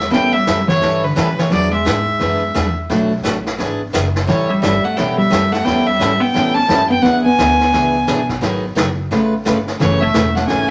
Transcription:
Already playing: upright bass E2, hollow-body jazz guitar G#3, fiddle E5
0.00 snare
0.10 steel-string acoustic guitar E3 G3 C#4 E4 A4, hollow-body jazz guitar B3, fiddle G5, brush sweep, snare
0.33 hollow-body jazz guitar G3, fiddle E5
0.47 upright bass F#2, steel-string acoustic guitar E3 G3 C#4 E4 A4, snare, hi-hat pedal
0.68 hollow-body jazz guitar E3, fiddle C#5, snare
0.81 upright bass G2, steel-string acoustic guitar E3 G3 C#4 E4 A4, brush sweep, snare
1.03 hollow-body jazz guitar D3, fiddle B4
1.16 upright bass A2, steel-string acoustic guitar E3 G3 C#4 E4 A4, hollow-body jazz guitar E3, fiddle B4, snare, hi-hat pedal
1.39 hollow-body jazz guitar E3, fiddle C#5, snare
1.50 upright bass E2, steel-string acoustic guitar E3 B3 D4 G#4, hollow-body jazz guitar F#3, fiddle D5, brush sweep, snare
1.73 hollow-body jazz guitar G#3, fiddle E5
1.85 upright bass G#2, steel-string acoustic guitar E3 B3 D4 G#4, snare, hi-hat pedal
2.19 upright bass F#2, steel-string acoustic guitar E3 B3 D4 G#4, brush sweep, snare
2.54 upright bass E2, steel-string acoustic guitar E3 B3 D4 G#4, snare, hi-hat pedal
2.90 upright bass B1, steel-string acoustic guitar B2 F#3 A3 D4 F#4, brush sweep, snare
3.23 upright bass A1, steel-string acoustic guitar B2 F#3 A3 D4 F#4, snare, hi-hat pedal
3.46 snare
3.58 upright bass G#1, steel-string acoustic guitar E3 B3 D4 G#4, brush sweep, snare
3.93 upright bass F#1, steel-string acoustic guitar E3 B3 D4 G#4, snare, hi-hat pedal
4.16 snare
4.27 upright bass A1, steel-string acoustic guitar E3 G3 C#4 E4 A4, hollow-body jazz guitar E3, fiddle C#5, brush sweep, snare
4.50 hollow-body jazz guitar G3, fiddle E5
4.62 upright bass G1, steel-string acoustic guitar E3 G3 C#4 E4 A4, hollow-body jazz guitar G3, fiddle E5, snare, hi-hat pedal
4.84 hollow-body jazz guitar A3, fiddle F#5, muted upright bass stroke
4.97 upright bass B1, steel-string acoustic guitar E3 G3 C#4 E4 A4, hollow-body jazz guitar B3, fiddle G5, brush sweep, snare
5.18 hollow-body jazz guitar G3, fiddle E5
5.30 upright bass F#2, steel-string acoustic guitar E3 G3 C#4 E4 A4, snare, hi-hat pedal
5.52 hollow-body jazz guitar A3, fiddle F#5, snare
5.65 upright bass E2, steel-string acoustic guitar E3 G3 C#4 E4 A4, hollow-body jazz guitar B3, fiddle G5, brush sweep, snare
5.85 hollow-body jazz guitar G3, fiddle E5
5.99 upright bass G#2, steel-string acoustic guitar E3 G3 C#4 E4 A4, snare, hi-hat pedal
6.20 hollow-body jazz guitar B3, fiddle G5
6.34 upright bass A2, steel-string acoustic guitar E3 G3 C#4 E4 A4, brush sweep, snare
6.55 hollow-body jazz guitar C#4, fiddle A5
6.68 upright bass F#2, steel-string acoustic guitar E3 G3 C#4 E4 A4, snare, hi-hat pedal
6.89 hollow-body jazz guitar B3, fiddle G5
7.02 upright bass E2, steel-string acoustic guitar E3 B3 D4 G#4, hollow-body jazz guitar B3, fiddle F#5, brush sweep, snare
7.24 hollow-body jazz guitar B3, fiddle G#5
7.38 upright bass D2, steel-string acoustic guitar E3 B3 D4 G#4, snare, hi-hat pedal
7.61 snare
7.73 upright bass C#2, steel-string acoustic guitar E3 B3 D4 G#4, brush sweep, snare
8.07 upright bass B1, steel-string acoustic guitar E3 B3 D4 G#4, snare, hi-hat pedal
8.29 kick, snare
8.41 upright bass G#1, steel-string acoustic guitar D#3 F#3 B3 D#4 G#4, brush sweep, snare
8.75 upright bass F#1, steel-string acoustic guitar D#3 F#3 B3 D#4 G#4, snare, hi-hat pedal
9.11 upright bass A1, steel-string acoustic guitar C#3 A3 B3 F4 B4, brush sweep, snare
9.45 upright bass G1, steel-string acoustic guitar C#3 A3 B3 F4 B4, snare, hi-hat pedal
9.68 snare
9.79 upright bass F#1, steel-string acoustic guitar C#3 E3 A3 C#4 F#4, hollow-body jazz guitar E3, fiddle C#5, brush sweep, snare
10.01 hollow-body jazz guitar A3, fiddle E5
10.14 upright bass E1, steel-string acoustic guitar C#3 E3 A3 C#4 F#4, snare, hi-hat pedal
10.35 hollow-body jazz guitar A3, fiddle F#5, snare
10.48 upright bass G#1, steel-string acoustic guitar C#3 E3 A3 C#4 F#4, hollow-body jazz guitar C#4, fiddle G#5, brush sweep, snare

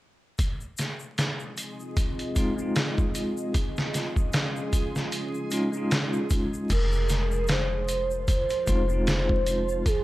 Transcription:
0.38 synth texture G#3 G#4, ambient pad C4 F4 G#4 D#5, kick, closed hi-hat, shaker
0.61 shaker
0.78 snare, closed hi-hat, shaker
1.00 shaker
1.18 snare, closed hi-hat, shaker
1.40 shaker
1.57 closed hi-hat, shaker
1.80 shaker
1.97 kick, closed hi-hat, shaker
2.19 closed hi-hat, shaker
2.35 tine electric piano G#3 C4 D#4 F4, kick, closed hi-hat, shaker
2.56 tine electric piano G#3 C4 D#4, shaker
2.62 tine electric piano F4
2.76 snare, closed hi-hat, shaker
2.98 kick, shaker
3.15 closed hi-hat, shaker
3.37 shaker
3.54 ambient pad C#4 F4, kick, closed hi-hat, shaker
3.77 snare, shaker
3.94 snare, closed hi-hat, shaker
4.16 kick, shaker
4.33 snare, closed hi-hat, shaker
4.56 shaker
4.73 kick, closed hi-hat, shaker
4.95 snare, shaker
5.12 closed hi-hat, shaker
5.34 shaker
5.51 tine electric piano G#3 C#4 D#4 F4, closed hi-hat, shaker
5.72 tine electric piano G#3 C#4 D#4, shaker
5.77 tine electric piano F4
5.91 snare, closed hi-hat, shaker
6.13 shaker
6.30 kick, closed hi-hat, shaker
6.54 shaker
6.69 808-style bass F1, synth texture F3 F4, soft synth lead A#4, kick, closed hi-hat, crash, shaker
6.92 shaker
7.09 snare, closed hi-hat, shaker
7.32 shaker
7.47 soft synth lead C5, snare, closed hi-hat, shaker
7.89 closed hi-hat, shaker
8.11 shaker
8.28 soft synth lead C5, kick, closed hi-hat, shaker
8.50 closed hi-hat, shaker
8.66 808-style bass F1, tine electric piano G#3 C4 D#4 F4, kick, closed hi-hat, shaker
8.88 tine electric piano G#3 C4 D#4, shaker
8.93 tine electric piano F4
9.07 soft synth lead C5, snare, closed hi-hat, shaker
9.29 kick
9.47 closed hi-hat, shaker
9.69 shaker
9.86 soft synth lead G#4, kick, closed hi-hat, shaker

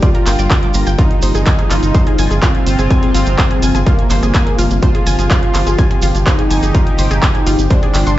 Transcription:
Already playing: synth drone G2 G3, analog synth pad D3 G3 A#3 G4
0.02 analog synth lead F4, synth arpeggio sound D5 D6, kick, closed hi-hat, shekere
0.15 synth arpeggio sound A#4 A#5, closed hi-hat
0.26 analog synth bass G1, synth arpeggio sound G5 G6, clap, open hi-hat, shekere
0.39 analog synth bass G1, synth arpeggio sound D5 D6, closed hi-hat, shekere
0.51 synth arpeggio sound D5 D6, kick, clap, closed hi-hat, shekere
0.63 synth arpeggio sound D6, closed hi-hat
0.74 analog synth bass G1, synth arpeggio sound A#5 A#6, open hi-hat, shekere
0.86 analog synth bass G1, synth arpeggio sound G5 G6, closed hi-hat, shekere
0.98 analog synth pad C3 F3 F4, analog synth lead D#4, synth arpeggio sound F4 F5, kick, closed hi-hat, shekere
1.11 closed hi-hat
1.22 analog synth bass G1, synth arpeggio sound C5 C6, open hi-hat, shekere
1.35 analog synth bass G1, synth arpeggio sound G#4 G#5, closed hi-hat, shekere
1.46 synth arpeggio sound G#5 G#6, kick, clap, closed hi-hat, shekere
1.59 synth arpeggio sound G#4 G#5, closed hi-hat
1.71 analog synth bass G1, synth arpeggio sound F4 F5, clap, open hi-hat, shekere
1.83 analog synth bass G1, closed hi-hat, shekere
1.95 synth arpeggio sound C5 C6, kick, closed hi-hat, shekere
2.07 synth arpeggio sound G#4 G#5, closed hi-hat
2.19 analog synth bass G1, synth arpeggio sound G#5 G#6, open hi-hat, shekere
2.31 analog synth bass G1, synth arpeggio sound G#4 G#5, closed hi-hat, shekere
2.43 analog synth lead C4, synth arpeggio sound F4 F5, kick, clap, closed hi-hat, shekere
2.55 closed hi-hat
2.67 analog synth bass G1, synth arpeggio sound C5 C6, open hi-hat, shekere
2.79 analog synth bass G1, synth arpeggio sound G#4 G#5, closed hi-hat, shekere
2.90 synth arpeggio sound G#5 G#6, kick, closed hi-hat, shekere
3.03 synth arpeggio sound G#4 G#5, closed hi-hat
3.14 analog synth bass G1, synth arpeggio sound F4 F5, open hi-hat, shekere
3.26 analog synth bass G1, closed hi-hat, shekere
3.38 synth arpeggio sound C5 C6, kick, clap, closed hi-hat, shekere
3.51 synth arpeggio sound G#4 G#5, closed hi-hat
3.62 analog synth bass G1, synth arpeggio sound G#5 G#6, open hi-hat, shekere
3.75 analog synth bass G1, synth arpeggio sound G#4 G#5, closed hi-hat, shekere
3.87 analog synth lead A#3, synth arpeggio sound F4 F5, kick, closed hi-hat, shekere
3.99 closed hi-hat
4.10 analog synth bass G1, synth arpeggio sound C5 C6, clap, open hi-hat, shekere
4.23 analog synth bass G1, synth arpeggio sound G#4 G#5, closed hi-hat, shekere
4.34 synth arpeggio sound G#5 G#6, kick, clap, closed hi-hat, shekere
4.47 synth arpeggio sound G#4 G#5, closed hi-hat
4.59 analog synth bass G1, synth arpeggio sound F4 F5, open hi-hat, shekere
4.71 analog synth bass G1, closed hi-hat, shekere
4.82 analog synth lead F4, analog synth pad G4, synth arpeggio sound C5 C6, kick, closed hi-hat, shekere
4.95 synth arpeggio sound G#4 G#5, closed hi-hat
5.07 analog synth bass G1, synth arpeggio sound G#5 G#6, open hi-hat, shekere
5.19 analog synth bass G1, synth arpeggio sound G#4 G#5, closed hi-hat, shekere
5.31 synth arpeggio sound F4 F5, kick, clap, closed hi-hat, shekere
5.43 closed hi-hat
5.54 analog synth bass G1, synth arpeggio sound C5 C6, clap, open hi-hat, shekere
5.67 analog synth bass G1, synth arpeggio sound G#4 G#5, closed hi-hat, shekere
5.79 synth arpeggio sound G#5 G#6, kick, closed hi-hat, shekere
5.91 synth arpeggio sound G#4 G#5, closed hi-hat
6.02 analog synth bass G1, synth arpeggio sound F4 F5, open hi-hat, shekere
6.15 analog synth bass G1, closed hi-hat, shekere
6.27 analog synth lead D#4, synth arpeggio sound C5 C6, kick, clap, closed hi-hat, shekere
6.39 synth arpeggio sound G#4 G#5, closed hi-hat
6.51 analog synth bass G1, synth arpeggio sound G#5 G#6, open hi-hat, shekere
6.63 analog synth bass G1, synth arpeggio sound G#4 G#5, closed hi-hat, shekere
6.75 synth arpeggio sound F4 F5, kick, closed hi-hat, shekere
6.87 closed hi-hat
6.98 analog synth bass G1, synth arpeggio sound C5 C6, open hi-hat, shekere
7.11 analog synth bass G1, synth arpeggio sound G#4 G#5, closed hi-hat, shekere
7.23 synth arpeggio sound G#5 G#6, kick, clap, closed hi-hat, shekere
7.35 synth arpeggio sound G#4 G#5, closed hi-hat
7.47 analog synth bass G1, synth arpeggio sound F4 F5, open hi-hat, shekere
7.59 analog synth bass G1, closed hi-hat, shekere
7.70 analog synth lead D4, synth arpeggio sound C5 C6, kick, closed hi-hat, shekere
7.83 synth arpeggio sound G#4 G#5, closed hi-hat
7.94 analog synth bass G1, synth arpeggio sound F4 F5, clap, open hi-hat, shekere
8.07 analog synth bass G1, synth arpeggio sound C6, closed hi-hat, shekere

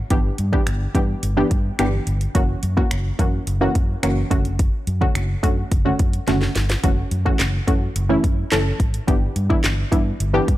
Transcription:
0.10 fingered electric bass G1, synth stab E3 B3 D4 G4, kick, closed hi-hat
0.38 fingered electric bass G2, closed hi-hat
0.53 synth stab E3 B3 D4 G4, kick
0.67 fingered electric bass G1, finger snap, closed hi-hat
0.95 fingered electric bass G2, synth stab E3 B3 D4 G4, kick, closed hi-hat
1.23 fingered electric bass G1, closed hi-hat
1.37 synth stab E3 B3 D4 G4
1.51 fingered electric bass G2, kick, closed hi-hat
1.79 fingered electric bass G1, synth stab E3 B3 D4 G4, finger snap, closed hi-hat
2.07 fingered electric bass G1, closed hi-hat
2.21 closed hi-hat
2.35 fingered electric bass F#1, synth stab E3 A#3 C#4 F#4, kick, closed hi-hat
2.63 fingered electric bass F#2, closed hi-hat
2.77 synth stab E3 A#3 C#4 F#4, kick
2.91 fingered electric bass F#1, finger snap, closed hi-hat
3.19 fingered electric bass F#2, synth stab E3 A#3 C#4 F#4, kick, closed hi-hat
3.47 fingered electric bass F#1, closed hi-hat
3.61 synth stab E3 A#3 C#4 F#4
3.75 fingered electric bass F#2, kick, closed hi-hat
4.03 fingered electric bass F#1, synth stab E3 A#3 C#4 F#4, finger snap, closed hi-hat
4.31 fingered electric bass F#1, synth stab D3 A3 C#4 F#4, kick, closed hi-hat
4.45 closed hi-hat
4.59 kick, closed hi-hat
4.87 fingered electric bass F#2, closed hi-hat
5.01 synth stab D3 A3 C#4 F#4, kick
5.15 fingered electric bass F#1, finger snap, closed hi-hat
5.43 fingered electric bass F#2, synth stab D3 A3 C#4 F#4, kick, closed hi-hat
5.72 fingered electric bass F#1, kick, closed hi-hat
5.85 synth stab D3 A3 C#4 F#4
5.99 fingered electric bass F#2, kick, closed hi-hat
6.13 closed hi-hat
6.27 fingered electric bass F#1, synth stab D3 A3 C#4 F#4, snare, closed hi-hat
6.42 snare
6.56 fingered electric bass G1, snare, closed hi-hat
6.70 snare, closed hi-hat
6.83 fingered electric bass F#1, synth stab E3 A3 C#4 F#4, kick, closed hi-hat
7.11 fingered electric bass F#2, closed hi-hat
7.25 synth stab E3 A3 C#4 F#4, kick
7.39 fingered electric bass F#1, snare, clap, closed hi-hat
7.67 fingered electric bass F#2, synth stab E3 A3 C#4 F#4, kick, closed hi-hat
7.96 fingered electric bass F#1, closed hi-hat
8.09 synth stab E3 A3 C#4 E4
8.24 fingered electric bass F#2, kick, closed hi-hat
8.52 fingered electric bass F#1, synth stab E3 A3 C#4 A4, snare, clap, closed hi-hat
8.80 fingered electric bass G#1, kick, closed hi-hat
8.94 closed hi-hat
9.07 fingered electric bass G1, synth stab E3 B3 D4 G4, kick, closed hi-hat
9.36 fingered electric bass G2, closed hi-hat
9.50 synth stab E3 B3 D4 E4, kick
9.64 fingered electric bass G1, snare, clap, closed hi-hat
9.92 fingered electric bass G2, synth stab E3 B3 D4 E4, kick, closed hi-hat
10.20 fingered electric bass G1, closed hi-hat
10.33 synth stab E3 B3 D4 G4
10.48 fingered electric bass G2, kick, closed hi-hat

